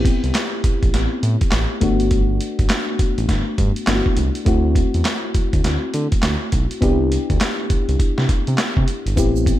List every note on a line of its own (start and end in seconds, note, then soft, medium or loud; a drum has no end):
0.00 0.11 A1 loud
0.00 1.77 B3 medium
0.00 1.78 C4 medium
0.00 1.78 E4 medium
0.00 1.78 G4 medium
0.05 kick loud
0.05 closed hi-hat medium
0.24 0.32 C2 medium
0.24 closed hi-hat soft
0.35 snare loud
0.35 clap medium
0.35 closed hi-hat medium
0.64 0.72 A1 soft
0.64 kick medium
0.64 closed hi-hat medium
0.83 0.91 A1 medium
0.83 kick medium
0.83 closed hi-hat soft
0.94 1.07 A1 medium
0.94 snare medium
0.94 closed hi-hat medium
1.23 1.37 A2 loud
1.23 closed hi-hat medium
1.41 kick medium
1.41 closed hi-hat medium
1.51 1.66 A1 loud
1.51 snare loud
1.51 clap medium
1.51 closed hi-hat medium
1.81 2.39 G1 loud
1.81 3.83 A3 medium
1.81 3.83 B3 medium
1.81 3.84 D4 medium
1.81 3.84 F#4 medium
1.81 kick medium
1.81 closed hi-hat medium
2.00 closed hi-hat medium
2.11 kick loud
2.11 closed hi-hat medium
2.41 closed hi-hat medium
2.59 2.67 G1 medium
2.59 kick medium
2.59 closed hi-hat soft
2.69 snare loud
2.69 clap medium
2.69 closed hi-hat medium
2.99 3.07 A1 medium
2.99 kick medium
2.99 closed hi-hat medium
3.18 3.26 A1 loud
3.18 closed hi-hat soft
3.29 3.42 G1 medium
3.29 kick medium
3.29 snare medium
3.29 closed hi-hat medium
3.58 3.72 G2 loud
3.58 kick medium
3.58 closed hi-hat medium
3.76 closed hi-hat medium
3.87 4.01 G1 medium
3.87 4.44 A3 medium
3.87 4.46 B3 medium
3.87 4.47 D4 soft
3.87 3.96 E4 soft
3.87 snare loud
3.87 clap medium
3.87 closed hi-hat medium
3.95 4.46 F#4 medium
4.06 kick medium
4.17 4.31 C2 loud
4.17 closed hi-hat medium
4.35 closed hi-hat medium
4.45 4.82 D2 loud
4.45 6.77 A3 medium
4.45 6.77 C4 medium
4.45 6.78 E4 medium
4.45 6.78 F#4 medium
4.45 kick loud
4.45 closed hi-hat medium
4.75 kick loud
4.75 closed hi-hat medium
4.94 5.02 E2 medium
4.94 closed hi-hat medium
5.05 snare loud
5.05 clap medium
5.05 closed hi-hat medium
5.34 5.42 D2 medium
5.34 kick medium
5.34 closed hi-hat medium
5.53 5.61 D2 medium
5.53 kick loud
5.53 closed hi-hat soft
5.64 5.78 D2 medium
5.64 snare medium
5.64 closed hi-hat medium
5.94 6.08 D3 loud
5.94 closed hi-hat medium
6.12 kick medium
6.12 closed hi-hat medium
6.22 6.37 D2 medium
6.22 snare loud
6.22 clap medium
6.22 closed hi-hat medium
6.52 6.66 B1 medium
6.52 kick medium
6.52 closed hi-hat medium
6.71 closed hi-hat medium
6.81 7.17 C2 loud
6.81 9.13 B3 medium
6.81 9.13 D4 medium
6.81 9.13 E4 medium
6.81 9.14 G4 medium
6.81 kick loud
6.81 closed hi-hat medium
7.12 closed hi-hat medium
7.30 7.38 D2 medium
7.30 kick medium
7.30 closed hi-hat medium
7.41 snare loud
7.41 clap medium
7.41 closed hi-hat medium
7.70 7.77 C2 medium
7.70 kick medium
7.70 closed hi-hat medium
7.88 7.97 C2 medium
7.88 closed hi-hat soft
7.99 kick medium
7.99 closed hi-hat medium
8.18 8.26 C3 loud
8.18 snare medium
8.29 kick medium
8.29 closed hi-hat medium
8.47 8.56 C3 loud
8.47 closed hi-hat medium
8.58 snare loud
8.58 clap medium
8.58 closed hi-hat medium
8.77 8.85 C3 medium
8.77 kick medium
8.88 closed hi-hat medium
9.06 9.19 G1 medium
9.06 closed hi-hat medium
9.16 9.53 A1 loud
9.16 9.59 B3 medium
9.16 9.59 C4 medium
9.16 9.59 E4 medium
9.16 9.59 G4 medium
9.16 kick loud
9.16 closed hi-hat medium
9.16 shaker medium
9.36 shaker medium
9.46 kick loud
9.46 closed hi-hat medium
9.46 shaker soft